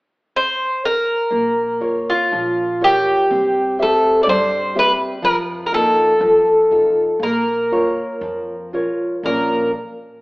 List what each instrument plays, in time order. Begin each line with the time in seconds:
0.36 bouzouki C5
0.85 bouzouki A#4
1.30 upright bass A#1, nylon-string guitar A#3
1.81 nylon-string guitar F4 A#4 C#5
2.10 bouzouki F4
2.32 upright bass A#1, nylon-string guitar F3
2.81 nylon-string guitar F4 A#4 C#5, bouzouki G4
3.30 upright bass C2, nylon-string guitar C4
3.79 nylon-string guitar G4 C5 E5, bouzouki A4
4.23 upright bass G2, bouzouki D5
4.27 nylon-string guitar G3, bouzouki C5
4.75 nylon-string guitar C4 G4 E5, bouzouki B4
5.22 upright bass F2, nylon-string guitar F3, bouzouki A#4
5.66 bouzouki A#4
5.72 nylon-string guitar A#3 D#4 F4, bouzouki A4
6.21 upright bass F2, nylon-string guitar F3
6.71 nylon-string guitar D#4 F4 A4
7.20 upright bass A#1, nylon-string guitar A#3, bouzouki A#4
7.72 nylon-string guitar F4 A#4 C#5
8.21 upright bass F2, nylon-string guitar F3
8.73 nylon-string guitar F4 A#4 C#5
9.23 upright bass A#1, nylon-string guitar A#2 F3 A#3 C#4 F4, bouzouki A#4